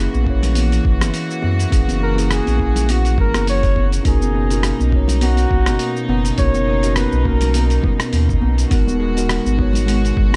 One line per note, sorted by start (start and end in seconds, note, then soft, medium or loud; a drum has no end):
0.00 4.01 E3 medium
0.00 0.23 A#3 medium
0.00 8.67 A#3 medium
0.00 0.26 C#4 medium
0.00 0.28 E4 medium
0.00 4.01 F#4 medium
0.00 1.74 G#4 loud
0.13 0.80 A#1 medium
0.13 high conga medium
0.13 shaker soft
0.23 1.67 A#3 medium
0.23 1.69 C#4 medium
0.23 kick medium
0.28 1.70 E4 medium
0.28 1.71 C#5 medium
0.43 open hi-hat soft
0.43 low conga medium
0.43 shaker medium
0.55 open hi-hat medium
0.55 high conga medium
0.55 shaker medium
0.72 open hi-hat soft
0.72 shaker soft
0.85 1.02 A#1 medium
0.85 kick medium
1.00 1.11 F#1 medium
1.00 cross-stick medium
1.00 open hi-hat soft
1.00 high conga medium
1.00 shaker medium
1.14 open hi-hat medium
1.14 shaker medium
1.30 shaker soft
1.42 1.66 F#2 medium
1.42 high bongo medium
1.42 high conga medium
1.59 open hi-hat soft
1.59 shaker medium
1.70 1.84 A#1 loud
1.70 2.13 A#3 medium
1.70 2.13 C#4 medium
1.70 2.14 E4 medium
1.70 2.14 G#4 loud
1.70 kick loud
1.70 open hi-hat medium
1.70 shaker medium
1.88 2.40 F#1 loud
1.88 open hi-hat soft
1.88 high conga medium
1.88 shaker soft
2.03 2.33 A#4 loud
2.15 2.32 A#3 medium
2.15 2.32 C#4 medium
2.15 2.33 E4 medium
2.15 2.33 G#4 loud
2.15 open hi-hat soft
2.15 high bongo medium
2.15 shaker medium
2.31 2.92 G#4 medium
2.31 cross-stick medium
2.31 open hi-hat medium
2.31 shaker medium
2.45 3.19 A#1 medium
2.45 open hi-hat soft
2.45 high conga medium
2.45 shaker soft
2.56 4.00 A#3 medium
2.56 4.02 C#4 medium
2.56 kick medium
2.60 4.02 E4 medium
2.60 4.04 G#4 medium
2.76 open hi-hat soft
2.76 low conga medium
2.76 shaker medium
2.88 3.19 F#4 medium
2.88 open hi-hat medium
2.88 high bongo soft
2.88 high conga medium
2.88 shaker medium
3.05 open hi-hat soft
3.05 shaker soft
3.18 3.35 G#1 medium
3.18 3.46 A#4 loud
3.18 kick medium
3.18 low conga medium
3.34 4.00 F#1 loud
3.34 cross-stick medium
3.34 open hi-hat soft
3.34 high conga medium
3.34 shaker medium
3.47 3.91 C#5 loud
3.47 open hi-hat medium
3.47 shaker medium
3.63 kick loud
3.63 open hi-hat soft
3.63 shaker soft
3.76 kick medium
3.76 high conga medium
3.92 open hi-hat soft
3.92 shaker medium
4.03 4.17 B1 loud
4.03 10.36 B2 medium
4.03 4.14 A#3 medium
4.03 4.46 C#4 medium
4.03 8.67 D#4 medium
4.03 4.46 D#4 medium
4.03 4.47 F#4 medium
4.03 4.47 A#4 medium
4.03 kick loud
4.03 open hi-hat medium
4.03 shaker soft
4.08 4.90 G#4 medium
4.21 4.73 F#1 medium
4.21 high conga medium
4.21 shaker soft
4.35 4.43 B3 loud
4.49 4.88 C#4 medium
4.49 4.90 D#4 medium
4.49 4.90 F#4 medium
4.49 4.91 A#4 medium
4.49 open hi-hat soft
4.49 high bongo medium
4.49 shaker medium
4.63 4.72 A#3 loud
4.63 cross-stick medium
4.63 open hi-hat medium
4.63 shaker medium
4.79 5.46 B1 medium
4.79 high conga medium
4.79 shaker soft
4.89 5.02 A#3 medium
4.89 6.33 C#4 medium
4.89 6.35 D#4 medium
4.89 kick medium
4.94 6.36 F#4 medium
4.94 6.37 C#5 medium
5.08 open hi-hat soft
5.08 low conga loud
5.08 shaker medium
5.21 5.31 B3 loud
5.21 6.06 F#4 loud
5.21 open hi-hat medium
5.21 high conga medium
5.21 shaker medium
5.37 open hi-hat soft
5.37 shaker soft
5.51 5.69 B1 medium
5.51 5.60 A#3 loud
5.51 kick loud
5.66 5.77 F#1 medium
5.66 cross-stick medium
5.66 open hi-hat soft
5.66 high conga medium
5.66 shaker medium
5.79 5.89 A#3 medium
5.79 open hi-hat medium
5.79 shaker medium
5.96 shaker soft
6.08 6.31 F#1 medium
6.08 6.18 B3 loud
6.08 high bongo medium
6.08 high conga medium
6.25 open hi-hat soft
6.25 shaker medium
6.36 6.50 B1 loud
6.36 6.47 A#3 loud
6.36 6.79 C#4 medium
6.36 6.79 D#4 medium
6.36 6.80 F#4 medium
6.36 6.80 A#4 loud
6.36 6.99 C#5 loud
6.36 kick loud
6.36 open hi-hat medium
6.36 shaker medium
6.54 7.06 F#1 loud
6.54 high conga loud
6.54 shaker soft
6.68 6.77 A#3 medium
6.82 6.98 C#4 medium
6.82 6.99 D#4 medium
6.82 6.99 F#4 medium
6.82 7.00 A#4 medium
6.82 open hi-hat soft
6.82 high bongo medium
6.82 shaker medium
6.96 7.05 B3 loud
6.96 7.29 B4 loud
6.96 cross-stick medium
6.96 open hi-hat medium
6.96 shaker medium
7.12 7.78 B1 medium
7.12 high conga medium
7.12 shaker soft
7.22 7.34 A#3 loud
7.22 8.66 C#4 medium
7.22 8.67 D#4 medium
7.22 kick medium
7.26 8.69 F#4 medium
7.26 7.85 A#4 medium
7.26 8.70 A#4 medium
7.41 open hi-hat soft
7.41 low conga loud
7.41 shaker medium
7.54 7.63 A#3 medium
7.54 open hi-hat medium
7.54 high bongo soft
7.54 high conga medium
7.54 shaker medium
7.70 open hi-hat soft
7.70 shaker soft
7.83 7.93 B3 loud
7.83 kick loud
7.83 low conga medium
7.99 cross-stick medium
7.99 open hi-hat soft
7.99 high conga medium
7.99 shaker medium
8.13 8.35 D#2 medium
8.13 8.22 A#3 medium
8.13 open hi-hat medium
8.13 shaker medium
8.29 kick loud
8.29 shaker soft
8.42 8.65 B1 loud
8.42 8.51 A#3 medium
8.42 high conga medium
8.58 open hi-hat soft
8.58 shaker medium
8.70 8.83 G#1 loud
8.70 10.36 G#3 medium
8.70 9.12 B3 medium
8.70 8.80 B3 loud
8.70 9.13 D#4 medium
8.70 10.36 F#4 medium
8.70 9.13 F#4 medium
8.70 9.14 A#4 loud
8.70 kick loud
8.70 open hi-hat medium
8.70 shaker medium
8.87 9.39 D#1 medium
8.87 high conga medium
8.87 shaker soft
9.00 9.09 G#3 loud
9.15 9.54 B3 medium
9.15 9.55 D#4 medium
9.15 9.56 F#4 medium
9.15 9.56 A#4 medium
9.15 open hi-hat soft
9.15 high bongo soft
9.15 shaker medium
9.29 9.38 G#3 medium
9.29 cross-stick medium
9.29 open hi-hat medium
9.29 shaker medium
9.45 10.12 G#1 medium
9.45 high conga medium
9.45 shaker soft
9.55 10.36 B3 medium
9.55 9.67 B3 loud
9.55 10.36 D#4 medium
9.55 kick medium
9.60 10.36 F#4 medium
9.60 10.36 C#5 medium
9.73 open hi-hat soft
9.73 low conga medium
9.73 shaker medium
9.87 9.96 G#3 loud
9.87 open hi-hat medium
9.87 high conga loud
9.87 shaker medium
10.05 open hi-hat soft
10.05 shaker soft
10.17 10.35 G#1 medium
10.17 10.26 G#3 medium
10.17 kick loud
10.32 10.36 D#1 medium
10.32 high conga medium